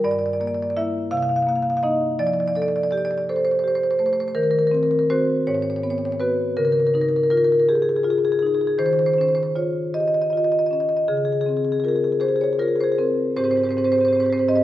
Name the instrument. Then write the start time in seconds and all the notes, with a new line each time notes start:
marimba
0.04 G2 D5
0.11 D5
0.19 D5
0.26 D5
0.33 D5
0.40 A#3 D5
0.47 D5
0.55 D5
0.62 D5
0.70 D5
0.76 A#3 E4 E5
1.11 C3 F5
1.17 F5
1.22 F5
1.29 F5
1.36 F5
1.42 F5
1.47 A#3 F5
1.55 F5
1.62 F5
1.70 F5
1.77 F5
1.83 A#3 D#4 D#5
2.19 F3 D5
2.27 D5
2.34 D5
2.40 D5
2.48 D5
2.55 A4 D5
2.62 D5
2.68 D5
2.76 D5
2.83 D5
2.91 G4 D5
2.98 D5
3.05 D5
3.11 D5
3.18 D5
3.29 A4 C5
3.36 C5
3.45 C5
3.51 C5
3.59 C5
3.64 G4 C5
3.75 C5
3.83 C5
3.91 C5
3.99 A3 C5
4.06 C5
4.13 C5
4.20 C5
4.28 C5
4.35 D#3 A#4
4.43 A#4
4.51 A#4
4.59 A#4
4.67 A#4
4.71 C4 A#4
4.83 A#4
4.91 A#4
4.99 A#4
5.10 C4 F#4 C5
5.47 G#2 C#5
5.54 C#5
5.62 C#5
5.70 C#5
5.76 C#5
5.83 B3 C#5
5.90 C#5
5.98 C#5
6.05 C#5
6.12 C#5
6.20 B3 F#4 B4
6.57 C#3 A#4
6.65 A#4
6.72 A#4
6.80 A#4
6.87 A#4
6.94 D#4 A#4
7.01 A#4
7.09 A#4
7.16 A#4
7.23 A#4
7.30 F4 A#4
7.37 A#4
7.45 A#4
7.52 A#4
7.59 A#4
7.69 G4 G#4
7.75 G#4
7.82 G#4
7.89 G#4
7.96 G#4
8.03 F4 G#4
8.10 G#4
8.18 G#4
8.25 G#4
8.32 G#4
8.39 D#4 G#4
8.47 G#4
8.55 G#4
8.61 G#4
8.67 G#4
8.78 D#3 C5
8.86 C5
8.93 C5
8.99 C5
9.06 C5
9.14 C5
9.18 C#4 C5
9.28 C5
9.35 C5
9.43 C5
9.56 F4 C#5
9.94 G4 D#5
10.00 D#5
10.08 D#5
10.14 D#5
10.22 D#5
10.30 F4 D#5
10.37 D#5
10.44 D#5
10.52 D#5
10.59 D#5
10.66 D#5
10.71 C#4 D#5
10.80 D#5
10.89 D#5
10.97 D#5
11.08 C#3 G#4
11.17 G#4
11.25 G#4
11.32 G#4
11.41 G#4
11.46 C4 G#4
11.57 G#4
11.65 G#4
11.72 G#4
11.80 F4 G#4
11.85 G#4 A#4
11.96 G#4
12.04 G#4
12.12 G#4
12.20 G4 G#4 C5
12.28 G#4
12.36 G#4
12.41 G#4 C#5
12.53 G#4
12.59 F4 G#4 A#4
12.68 G#4
12.76 G#4
12.80 G#4 C5
12.92 G#4
12.98 C4 A#4
13.37 G#2 C4 G4 C5
13.44 G#2 C4 G4 C5
13.51 C4 G4 C5
13.56 G#2 G4 C5
13.61 C4 G4 C5
13.67 G#2 C4 C5
13.72 G4
13.77 G#2 C4 G4 C5
13.84 G#2 C4 G4 C5
13.92 C4 G4 C5
13.98 G#2 C4 G4 C5
14.05 C4 G4 C5
14.10 G#2 C5
14.15 C4 G4
14.20 G#2 G4 C5
14.25 C4 C5
14.30 G#2 C4 G4 C5
14.38 G#2 C4 G4 C5
14.48 G#2 C4 G4 D#5
14.56 G#2 C4 G4 D#5